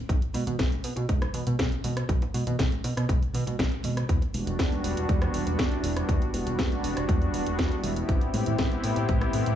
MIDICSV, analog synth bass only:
0, 0, Header, 1, 2, 480
1, 0, Start_track
1, 0, Key_signature, 1, "minor"
1, 0, Tempo, 500000
1, 88, Time_signature, 4, 2, 24, 8
1, 9171, End_track
2, 0, Start_track
2, 0, Title_t, "Analog synth bass"
2, 0, Program_c, 0, 38
2, 89, Note_on_c, 0, 35, 98
2, 182, Note_off_c, 0, 35, 0
2, 328, Note_on_c, 0, 47, 94
2, 421, Note_off_c, 0, 47, 0
2, 450, Note_on_c, 0, 47, 89
2, 540, Note_off_c, 0, 47, 0
2, 569, Note_on_c, 0, 35, 99
2, 662, Note_off_c, 0, 35, 0
2, 808, Note_on_c, 0, 47, 95
2, 901, Note_off_c, 0, 47, 0
2, 931, Note_on_c, 0, 47, 83
2, 1021, Note_off_c, 0, 47, 0
2, 1048, Note_on_c, 0, 35, 93
2, 1232, Note_off_c, 0, 35, 0
2, 1289, Note_on_c, 0, 47, 91
2, 1381, Note_off_c, 0, 47, 0
2, 1411, Note_on_c, 0, 47, 81
2, 1501, Note_off_c, 0, 47, 0
2, 1527, Note_on_c, 0, 35, 85
2, 1621, Note_off_c, 0, 35, 0
2, 1769, Note_on_c, 0, 47, 89
2, 1952, Note_off_c, 0, 47, 0
2, 2005, Note_on_c, 0, 35, 99
2, 2100, Note_off_c, 0, 35, 0
2, 2250, Note_on_c, 0, 47, 93
2, 2342, Note_off_c, 0, 47, 0
2, 2372, Note_on_c, 0, 47, 91
2, 2461, Note_off_c, 0, 47, 0
2, 2487, Note_on_c, 0, 35, 96
2, 2581, Note_off_c, 0, 35, 0
2, 2730, Note_on_c, 0, 47, 95
2, 2822, Note_off_c, 0, 47, 0
2, 2851, Note_on_c, 0, 47, 82
2, 2941, Note_off_c, 0, 47, 0
2, 2967, Note_on_c, 0, 35, 97
2, 3061, Note_off_c, 0, 35, 0
2, 3213, Note_on_c, 0, 47, 102
2, 3304, Note_off_c, 0, 47, 0
2, 3334, Note_on_c, 0, 47, 85
2, 3422, Note_off_c, 0, 47, 0
2, 3449, Note_on_c, 0, 35, 105
2, 3542, Note_off_c, 0, 35, 0
2, 3693, Note_on_c, 0, 47, 87
2, 3874, Note_off_c, 0, 47, 0
2, 3929, Note_on_c, 0, 40, 96
2, 4021, Note_off_c, 0, 40, 0
2, 4168, Note_on_c, 0, 28, 90
2, 4261, Note_off_c, 0, 28, 0
2, 4293, Note_on_c, 0, 28, 92
2, 4382, Note_off_c, 0, 28, 0
2, 4408, Note_on_c, 0, 40, 96
2, 4501, Note_off_c, 0, 40, 0
2, 4648, Note_on_c, 0, 28, 97
2, 4741, Note_off_c, 0, 28, 0
2, 4770, Note_on_c, 0, 28, 83
2, 4860, Note_off_c, 0, 28, 0
2, 4888, Note_on_c, 0, 40, 93
2, 5072, Note_off_c, 0, 40, 0
2, 5130, Note_on_c, 0, 28, 91
2, 5222, Note_off_c, 0, 28, 0
2, 5250, Note_on_c, 0, 28, 82
2, 5340, Note_off_c, 0, 28, 0
2, 5365, Note_on_c, 0, 40, 88
2, 5460, Note_off_c, 0, 40, 0
2, 5607, Note_on_c, 0, 28, 88
2, 5791, Note_off_c, 0, 28, 0
2, 5844, Note_on_c, 0, 40, 102
2, 5939, Note_off_c, 0, 40, 0
2, 6086, Note_on_c, 0, 28, 96
2, 6180, Note_off_c, 0, 28, 0
2, 6210, Note_on_c, 0, 28, 90
2, 6300, Note_off_c, 0, 28, 0
2, 6323, Note_on_c, 0, 40, 98
2, 6419, Note_off_c, 0, 40, 0
2, 6567, Note_on_c, 0, 28, 96
2, 6661, Note_off_c, 0, 28, 0
2, 6689, Note_on_c, 0, 28, 83
2, 6780, Note_off_c, 0, 28, 0
2, 6806, Note_on_c, 0, 40, 95
2, 6991, Note_off_c, 0, 40, 0
2, 7051, Note_on_c, 0, 28, 92
2, 7143, Note_off_c, 0, 28, 0
2, 7171, Note_on_c, 0, 28, 82
2, 7261, Note_off_c, 0, 28, 0
2, 7284, Note_on_c, 0, 40, 87
2, 7379, Note_off_c, 0, 40, 0
2, 7526, Note_on_c, 0, 28, 89
2, 7711, Note_off_c, 0, 28, 0
2, 7765, Note_on_c, 0, 33, 100
2, 7860, Note_off_c, 0, 33, 0
2, 8007, Note_on_c, 0, 45, 92
2, 8101, Note_off_c, 0, 45, 0
2, 8130, Note_on_c, 0, 45, 86
2, 8220, Note_off_c, 0, 45, 0
2, 8246, Note_on_c, 0, 33, 96
2, 8340, Note_off_c, 0, 33, 0
2, 8489, Note_on_c, 0, 45, 99
2, 8582, Note_off_c, 0, 45, 0
2, 8609, Note_on_c, 0, 45, 83
2, 8700, Note_off_c, 0, 45, 0
2, 8726, Note_on_c, 0, 33, 95
2, 8911, Note_off_c, 0, 33, 0
2, 8968, Note_on_c, 0, 45, 91
2, 9061, Note_off_c, 0, 45, 0
2, 9090, Note_on_c, 0, 45, 82
2, 9171, Note_off_c, 0, 45, 0
2, 9171, End_track
0, 0, End_of_file